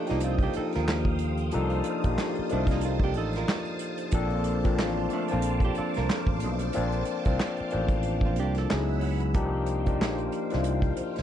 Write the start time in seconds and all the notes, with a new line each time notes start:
Already playing: F3 A#3 D4 D#4 G4 A4 C5 F5 G5 D#6
0.07 F3 A#3 D4 D#4 F4, snare, closed hi-hat
0.11 C2
0.20 F4, closed hi-hat
0.25 C4
0.39 G4, kick, closed hi-hat
0.43 D4
0.53 A4, closed hi-hat
0.57 D#4, muted fretless electric bass stroke
0.72 D#2 F4 A#4, snare, closed hi-hat
0.88 snare, clap
1.05 kick
1.19 closed hi-hat
1.37 closed hi-hat
1.51 C2 F3 A#3 D4 D#4 A4 A5, closed hi-hat
1.70 closed hi-hat
1.84 closed hi-hat
2.04 A#1 F3 A#3 D4 D#4 G4, kick, closed hi-hat
2.18 snare, clap
2.35 muted fretless electric bass stroke, closed hi-hat
2.49 C2 F3 A3 A#3 D4 D#4 A#4, closed hi-hat
2.67 kick, snare, closed hi-hat
2.71 A#3 D#4
2.81 F4, closed hi-hat
2.86 C4
2.99 kick
3.04 D4 G4
3.14 A1 A4, closed hi-hat
3.18 D#4
3.33 snare, closed hi-hat
3.37 F4 A#4
3.49 snare, clap
3.65 closed hi-hat
3.79 closed hi-hat
3.97 closed hi-hat
4.11 A#1 F3 A#3 C4 D4 A4 C5 F5 D6, kick, closed hi-hat
4.30 closed hi-hat
4.44 closed hi-hat
4.64 F3 A#3 C4 D4 F4, kick, closed hi-hat
4.79 A1, snare, clap
5.10 A3 D4, closed hi-hat
5.28 F3 A#3 C4 D4 F4 A5, closed hi-hat
5.33 A#1 C4
5.42 closed hi-hat
5.60 kick, closed hi-hat
5.65 D4 G4
5.75 D4 A4, closed hi-hat
5.79 muted fretless electric bass stroke
5.94 C2 F4 A#4, snare, closed hi-hat
6.10 snare, clap
6.27 A1, kick
6.40 B1, closed hi-hat
6.59 closed hi-hat
6.73 A#1 F3 A#3 C4 D4 F4, closed hi-hat
6.92 closed hi-hat
7.05 closed hi-hat
7.25 C2 F3 A#3 C4 D4 F4, kick, closed hi-hat
7.40 snare, clap
7.57 muted fretless electric bass stroke, closed hi-hat
7.70 A1 F3 A#3 C4 D4 C5, closed hi-hat
7.89 kick, closed hi-hat
8.03 closed hi-hat
8.21 kick
8.25 C4 F4
8.36 G4, closed hi-hat
8.40 C2 D4
8.54 A4, snare, closed hi-hat
8.59 D4
8.70 C#2 F#3 B3 D#4 E4 G#4 C#5 F#5 B5 E6, snare, clap
9.01 open hi-hat
9.20 closed hi-hat
9.34 C2 F3 A#3 D4 D#4 G4 C5 F5 G5, kick, closed hi-hat
9.66 closed hi-hat
9.86 F3 A#3 D4 D#4 G4, kick, closed hi-hat
10.02 A#1, snare, clap
10.18 closed hi-hat
10.32 closed hi-hat
10.50 C2 F3 A#3 D4 D#4 E4, snare, closed hi-hat
10.60 F4
10.64 closed hi-hat
10.82 kick, closed hi-hat
10.97 closed hi-hat
11.01 muted fretless electric bass stroke
11.16 D2, snare, closed hi-hat